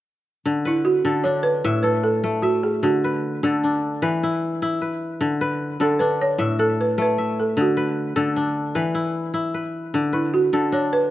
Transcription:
0.46 1.04 D3 medium
0.65 0.87 E4 medium
0.65 1.88 B4 medium
0.85 1.22 F#4 medium
1.05 1.70 D3 medium
1.05 1.83 A4 medium
1.24 2.93 D4 medium
1.24 1.45 C#5 medium
1.43 1.81 B4 medium
1.64 2.88 A2 medium
1.64 2.42 E5 medium
1.83 3.15 A4 medium
1.83 2.04 B4 medium
2.04 2.45 A4 medium
2.24 4.23 A3 medium
2.42 2.61 F#4 medium
2.42 3.46 E5 medium
2.63 2.84 G#4 medium
2.83 3.42 D3 medium
2.83 3.98 F#4 medium
3.04 4.02 B4 medium
3.43 4.07 D3 medium
3.43 4.75 A4 medium
3.64 5.32 D4 medium
4.02 5.26 E3 medium
4.02 4.81 B4 medium
4.23 4.62 E4 medium
4.62 6.19 E4 medium
4.82 5.41 B4 medium
5.21 5.79 D3 medium
5.41 6.64 B4 medium
5.80 6.44 D3 medium
5.80 6.59 A4 medium
5.80 6.01 A4 medium
5.99 7.68 D4 medium
5.99 6.18 B4 medium
6.22 6.61 C#5 medium
6.38 7.62 A2 medium
6.38 7.18 E5 medium
6.59 7.91 A4 medium
6.59 6.79 A4 medium
6.81 7.00 B4 medium
6.98 8.98 A3 medium
6.98 7.41 B4 medium
7.18 8.22 E5 medium
7.40 7.59 A4 medium
7.57 8.15 D3 medium
7.57 8.14 F#4 medium
7.77 8.75 B4 medium
8.16 8.81 D3 medium
8.16 9.48 A4 medium
8.36 10.04 D4 medium
8.75 9.99 E3 medium
8.75 9.54 B4 medium
8.95 9.33 E4 medium
9.34 10.90 E4 medium
9.54 10.12 B4 soft
9.94 10.52 D3 medium
10.13 10.34 E4 medium
10.13 11.11 B4 medium
10.34 10.74 F#4 medium
10.53 11.11 D3 medium
10.53 11.11 A4 medium
10.72 11.11 D4 medium
10.72 10.93 C#5 medium
10.93 11.11 B4 medium

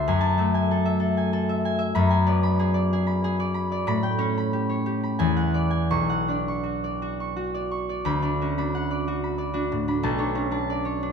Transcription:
0.00 0.37 E5 medium
0.00 0.19 A5 medium
0.08 1.94 F#2 medium
0.08 0.53 G#5 medium
0.21 1.97 A5 medium
0.38 1.97 A3 medium
0.38 0.84 E5 medium
0.54 1.16 G#5 medium
0.71 0.99 A4 medium
0.85 1.48 E5 medium
1.00 1.32 A4 medium
1.17 1.64 G#5 medium
1.33 1.98 A4 medium
1.49 1.78 E5 medium
1.65 2.09 G#5 medium
1.79 1.97 E5 medium
1.95 3.88 F#2 medium
1.95 2.42 B5 loud
2.10 3.88 G#5 medium
2.27 6.17 B3 medium
2.27 2.73 D5 medium
2.43 3.06 B5 medium
2.59 2.92 G#4 medium
2.74 3.38 D5 medium
2.93 3.23 G#4 medium
3.07 3.53 B5 medium
3.24 3.90 G#4 medium
3.40 3.70 D5 medium
3.54 3.86 B5 medium
3.72 3.89 D5 medium
3.87 5.22 A2 medium
3.87 4.36 B5 loud
4.03 5.22 G5 medium
4.18 5.21 C#4 medium
4.18 4.68 C#5 medium
4.38 5.02 B5 medium
4.53 4.85 G4 medium
4.69 5.22 C#5 medium
4.86 5.22 G4 medium
5.03 8.04 B5 medium
5.19 5.93 E2 medium
5.19 5.69 G#5 medium
5.37 6.08 F#5 medium
5.54 6.28 D5 medium
5.70 5.92 G#5 medium
5.91 8.08 B1 medium
5.91 6.47 C#6 medium
6.10 8.73 F#5 medium
6.28 8.21 D4 soft
6.28 6.83 D5 medium
6.48 7.19 C#6 medium
6.63 7.01 F#4 medium
6.84 7.53 D5 medium
7.02 7.35 F#4 medium
7.20 7.70 C#6 medium
7.36 8.40 F#4 medium
7.54 7.88 D5 medium
7.71 8.08 C#6 medium
7.89 8.21 D5 medium
8.05 10.06 D2 medium
8.05 8.57 B5 medium
8.22 8.57 D4 medium
8.22 8.89 D5 medium
8.41 8.70 C#4 medium
8.41 9.06 F#4 medium
8.58 9.53 D4 medium
8.58 9.22 B5 medium
8.75 11.12 F#5 medium
8.91 9.37 D5 medium
9.08 9.52 F#4 medium
9.24 9.87 B5 medium
9.38 10.69 D5 medium
9.54 9.87 D4 medium
9.54 11.12 F#4 medium
9.72 10.06 A2 medium
9.88 10.17 D4 medium
9.88 11.12 B5 medium
10.03 11.12 B1 medium
10.03 10.51 A5 medium
10.18 10.34 D4 medium
10.18 10.84 C#5 medium
10.35 10.63 C#4 medium
10.35 10.50 D4 medium
10.51 11.02 D4 medium
10.51 11.12 A5 medium
10.70 11.12 D5 medium
10.85 11.12 C#5 medium
11.03 11.12 D4 medium

